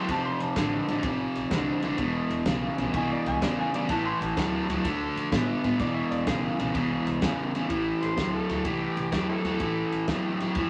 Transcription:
Already playing: electric slide guitar C6
0.08 upright bass F1, overdriven electric guitar F2 C3, electric slide guitar A5, kick, snare, ride
0.25 electric slide guitar C6
0.40 upright bass F1, electric slide guitar A5, snare, ride
0.56 upright bass A1, overdriven electric guitar F2 D3, kick, snare, ride
0.88 upright bass A1, overdriven electric guitar F2 D3, snare, ride
1.03 upright bass A1, overdriven electric guitar F2 C3, kick, snare, ride
1.35 upright bass A1, snare, ride
1.51 upright bass C2, overdriven electric guitar F2 D3, kick, snare, ride
1.82 upright bass F1, overdriven electric guitar F2 D3, snare, ride
1.98 upright bass E1, overdriven electric guitar E2 B2, kick, ride
2.30 upright bass E1, snare, ride
2.46 upright bass B1, overdriven electric guitar E2 C#3, kick, snare, ride
2.78 upright bass B1, overdriven electric guitar E2 C#3, snare, ride
2.94 upright bass C2, overdriven electric guitar E2 B2, electric slide guitar G#5, kick, ride
3.12 electric slide guitar D5
3.26 upright bass C2, electric slide guitar G#5, snare, ride
3.42 overdriven electric guitar E2 C#3, electric slide guitar D5, kick, snare, ride
3.60 electric slide guitar G#5
3.74 overdriven electric guitar E2 C#3, electric slide guitar D5, snare, ride
3.89 upright bass A1, overdriven electric guitar A2 E3, electric slide guitar A5, kick, snare, ride
4.06 electric slide guitar C6
4.21 upright bass A1, electric slide guitar A5, snare, ride
4.37 upright bass D2, overdriven electric guitar A2 F#3, kick, snare, ride
4.68 upright bass D2, overdriven electric guitar A2 F#3, snare, ride
4.84 upright bass D2, overdriven electric guitar D3 A3, kick, snare, ride
5.16 upright bass F2, snare, ride
5.32 upright bass A2, overdriven electric guitar D3 B3, kick, snare, ride
5.64 upright bass A2, overdriven electric guitar D3 B3, snare, ride
5.79 upright bass E1, overdriven electric guitar E2 B2, electric slide guitar D5, kick, snare, ride
5.94 electric slide guitar E5
6.11 upright bass E1, electric slide guitar D5, snare, ride
6.27 upright bass B1, overdriven electric guitar E2 C#3, electric slide guitar G#4, kick, snare, ride
6.44 electric slide guitar E4
6.59 upright bass B1, overdriven electric guitar E2 C#3, snare, ride
6.74 upright bass C2, overdriven electric guitar E2 B2, kick, snare, ride
7.06 upright bass C2, snare, ride
7.21 overdriven electric guitar E2 C#3, upright bass E2, kick, snare, ride
7.55 overdriven electric guitar E2 C#3, snare, ride
7.69 upright bass A1, overdriven electric guitar A2 E3, kick, ride
8.02 upright bass A1, harmonica G4 A4 C5, snare, ride
8.17 upright bass D2, overdriven electric guitar A2 F#3, kick, snare, ride
8.34 harmonica A4
8.49 upright bass D2, overdriven electric guitar A2 F#3, snare, ride
8.64 upright bass C2, overdriven electric guitar A2 E3, harmonica G4, kick, ride
8.97 upright bass C2, snare, ride
9.12 upright bass E2, overdriven electric guitar A2 F#3, harmonica G4, kick, snare, ride
9.29 harmonica C4 E4 A4
9.44 upright bass E2, overdriven electric guitar A2 F#3, snare, ride
9.60 upright bass A1, overdriven electric guitar A2 E3, kick, ride
9.92 upright bass A1, snare, ride
10.08 upright bass E2, overdriven electric guitar A2 F#3, electric slide guitar E5, kick, snare, ride
10.26 electric slide guitar G5
10.40 upright bass E2, overdriven electric guitar A2 F#3, snare, ride
10.55 upright bass F2, overdriven electric guitar A2 E3, kick, ride

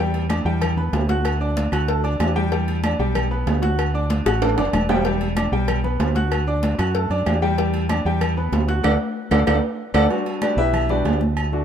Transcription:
Already playing: fingered electric bass E2, upright piano G3 G4
0.00 upright piano G5
0.14 high conga, low agogo
0.29 upright piano D4 D5 D6, cowbell, high conga, low timbale, low agogo, claves
0.45 fingered electric bass E2, upright piano G3 G4 G5, high conga
0.61 cowbell, high conga, low conga, low agogo, claves
0.77 upright piano B3 B4 B5, high conga, low conga
0.93 fingered electric bass D2, cowbell, high conga, low timbale, low agogo
1.09 upright piano F#4 F#5 F#6, cowbell, high conga
1.25 cowbell, high conga, low agogo, claves
1.40 upright piano D4 D5 D6, high conga
1.57 cowbell, high conga, low timbale, low agogo
1.72 fingered electric bass D2, upright piano F#4 F#5 F#6, cowbell, high conga, low agogo, claves
1.88 upright piano A3 A4 A5, cowbell, high conga
2.04 upright piano D4 D5 D6, high conga, low agogo
2.20 fingered electric bass E2, cowbell, high conga, low timbale, low agogo, claves
2.36 upright piano G3 G4 G5, high conga
2.52 upright piano G3 G4 G5, cowbell, high conga, low agogo
2.68 high conga, low agogo
2.84 upright piano D4 D5 D6, cowbell, high conga, low timbale, low agogo, claves
2.99 fingered electric bass B1, upright piano G3 G4 G5, high conga
3.15 cowbell, high conga, low conga, low agogo, claves
3.31 upright piano B3 B4 B5, high conga
3.46 fingered electric bass D2, cowbell, high conga, low timbale, low agogo
3.62 upright piano F#4 F#5 F#6, cowbell, high conga
3.79 cowbell, high conga, low agogo, claves
3.94 upright piano D4 D5 D6, high conga
4.10 cowbell, high conga, low timbale, low agogo
4.25 fingered electric bass A1, upright piano F#4 F#5 F#6, cowbell, high bongo, low agogo, claves
4.42 upright piano A3 A4 A5, cowbell, high conga, high timbale
4.58 fingered electric bass F#1, upright piano D4 D5 D6, low bongo, high conga, high timbale, low agogo
4.73 fingered electric bass E1, cowbell, low bongo, high conga, low agogo, claves
4.89 upright piano G3 G4 G5, low bongo, high conga, low timbale
5.05 upright piano G3 G4 G5, cowbell, high conga, low agogo
5.21 high conga, low agogo
5.36 upright piano D4 D5 D6, cowbell, high conga, low timbale, low agogo, claves
5.52 fingered electric bass B1, upright piano G3 G4 G5, high conga
5.68 cowbell, high conga, low conga, low agogo, claves
5.84 upright piano B3 B4 B5, high conga, low conga
5.99 fingered electric bass D2, cowbell, high conga, low timbale, low agogo
6.15 upright piano F#4 F#5 F#6, cowbell, high conga
6.31 cowbell, high conga, low agogo, claves
6.47 upright piano D4 D5 D6, high conga
6.63 cowbell, high conga, low timbale, low agogo
6.78 fingered electric bass F#2, upright piano F#4 F#5 F#6, cowbell, low agogo, claves
6.95 upright piano A3 A4 A5, cowbell, high conga
7.10 fingered electric bass F#2, upright piano D4 D5 D6, high conga, low agogo
7.26 fingered electric bass E2, cowbell, high conga, low timbale, low agogo, claves
7.42 upright piano G3 G4 G5, high conga
7.58 upright piano G3 G4 G5, cowbell, high conga, low agogo
7.74 high conga, low agogo
7.89 upright piano D4 D5 D6, cowbell, high conga, low timbale, low agogo, claves
8.05 fingered electric bass E2, upright piano G3 G4 G5, high conga
8.21 cowbell, high conga, low conga, low agogo, claves
8.37 upright piano B3 B4 B5, high conga
8.52 fingered electric bass D2, cowbell, high conga, low timbale, low agogo
8.68 upright piano F#4 F#5 F#6, cowbell
8.83 fingered electric bass D2, upright piano A4 D5 F#5, cowbell, high conga, high timbale, claves
9.31 fingered electric bass D2, upright piano A4 D5 F#5, cowbell, high conga, high timbale, claves
9.47 fingered electric bass D2, upright piano A4 D5 F#5, cowbell, high conga, high timbale, claves
9.94 fingered electric bass D2, upright piano A4 D5 F#5, cowbell, high conga, high timbale, claves
10.09 upright piano G3 D4 F#4, high conga, low agogo
10.26 high conga, low agogo
10.42 upright piano D4 G4 B4 D5, high conga, low timbale, low agogo, claves
10.57 fingered electric bass B1, upright piano E4 G4 B4 E5, high conga
10.73 high conga, low conga, low agogo, claves
10.89 upright piano G3 D4 F#4 G4 B4 D5, high conga, low conga
11.05 fingered electric bass D2, high conga, low timbale, low agogo
11.21 high conga
11.37 low agogo, claves
11.52 upright piano A3 D4 F#4, high conga

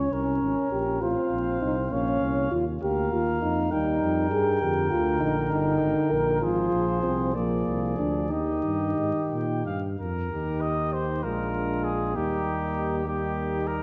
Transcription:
Already playing: bass trombone C#2, french horn C#4, trombone C#4, trumpet C#5
0.11 bass trombone C2, french horn C#4, trumpet A#4
0.42 bass trombone G#1
0.71 bass trombone A#1, french horn G4
1.01 bass trombone A1, trombone C4, french horn F4, trumpet C5 F5
1.31 bass trombone A#1
1.61 bass trombone C2, french horn D#4
1.91 bass trombone A#1, trombone A#3, french horn C#4, trumpet C#5 F5
2.21 bass trombone C2
2.51 bass trombone D#2, french horn F4
2.81 bass trombone D2, trombone A#3, french horn G4, trumpet A#4 F5
3.12 bass trombone D#2, french horn F4
3.42 bass trombone F2, french horn D#4
3.71 bass trombone D#2, trombone G3, french horn D#4, trumpet A#4 G5
4.02 bass trombone F2
4.31 bass trombone G2, french horn G#4
4.61 bass trombone F2, trombone D3, french horn G4, trumpet A#4
4.91 bass trombone D2, french horn F4
5.20 bass trombone A#1, french horn D#4
5.51 bass trombone G1, french horn D#4, trumpet G5
5.81 bass trombone G#1
6.11 bass trombone A#1, french horn A#4
6.41 bass trombone G#1, trombone F3, french horn F4, trumpet G#4 C5
6.73 bass trombone A#1
7.03 bass trombone C2, french horn C4
7.34 bass trombone A#1, trombone F3, french horn A#3, trumpet G#4 D5
7.66 bass trombone C2
7.98 bass trombone D2, french horn D4
8.30 bass trombone D#2, trombone D#3, french horn D#4, trumpet G4 D#5
8.64 bass trombone G2
8.97 bass trombone G#2
9.31 bass trombone A#2, trumpet G5
9.65 bass trombone G2, trumpet F5
9.99 bass trombone F2, trumpet A#4
10.31 bass trombone D#2, trombone D#3, french horn D#4, trumpet G4
10.61 trumpet D#5
10.93 trumpet C5
11.23 bass trombone A#1, trombone G#3, french horn D4, trumpet F4 A#4
11.84 trumpet G#4
12.15 bass trombone D#2, trombone G3, french horn A#3, trumpet D#4 G4
13.06 trombone G3, french horn A#3, trumpet D#4 G4
13.67 trumpet A#4

